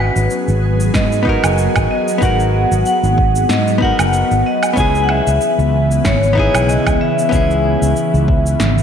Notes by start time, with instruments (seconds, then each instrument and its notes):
Already playing: ambient pad F#3 B3 G#4, hollow-body jazz guitar B3 D#4 F#4 B4
0.00 vibraphone B4
0.16 fretless electric bass G#1, cabasa
0.30 cabasa
0.48 fretless electric bass G#1, cabasa
0.80 cabasa
0.94 fretless electric bass G#2, vibraphone D#5, kick, snare, cabasa
1.12 cabasa
1.23 hollow-body jazz guitar B3 D#4, kick
1.27 hollow-body jazz guitar F#4 A#4
1.44 fretless electric bass F#1, cabasa, low woodblock
1.58 cabasa
1.76 fretless electric bass G#1, kick, cabasa, low woodblock
1.91 vibraphone D#5
2.08 cabasa
2.18 fretless electric bass G#1, hollow-body jazz guitar B3 D#4, kick, cabasa
2.22 hollow-body jazz guitar F#4 A#4, vibraphone F#5
2.40 cabasa
2.72 fretless electric bass G#1, cabasa
2.86 vibraphone F#5, cabasa
3.03 fretless electric bass G#1, cabasa
3.18 kick
3.35 cabasa
3.49 fretless electric bass G#2, vibraphone D#5, snare, cabasa
3.67 cabasa
3.78 hollow-body jazz guitar B3 D#4, kick
3.82 hollow-body jazz guitar F#4 A#4, vibraphone F#5
3.99 fretless electric bass F#1, cabasa, low woodblock
4.13 cabasa
4.31 fretless electric bass G#1, cabasa
4.46 vibraphone D#5
4.63 cabasa, low woodblock
4.73 fretless electric bass C#2, ambient pad C#3 E3, hollow-body jazz guitar B3 C#4, kick, cabasa
4.78 hollow-body jazz guitar E4 G#4, vibraphone G#5
4.95 cabasa
5.04 vibraphone F#5
5.09 vibraphone E5, low woodblock
5.27 fretless electric bass C#2, cabasa
5.41 cabasa
5.59 fretless electric bass C#2, cabasa
5.91 cabasa
6.05 fretless electric bass G#1, vibraphone C#5, kick, snare, cabasa
6.23 cabasa
6.33 hollow-body jazz guitar B3 D#4, kick
6.37 hollow-body jazz guitar E4 G#4
6.54 fretless electric bass B1, cabasa, low woodblock
6.69 vibraphone D#5, cabasa
6.86 fretless electric bass C#2, kick, cabasa, low woodblock
7.01 vibraphone E5
7.19 cabasa
7.29 fretless electric bass C#2, hollow-body jazz guitar B3 C#4, kick, cabasa
7.33 hollow-body jazz guitar E4 G#4
7.51 cabasa
7.82 fretless electric bass C#2, cabasa
7.96 cabasa
8.14 fretless electric bass C#2, cabasa
8.28 kick
8.46 cabasa
8.60 fretless electric bass G#1, snare, cabasa
8.78 cabasa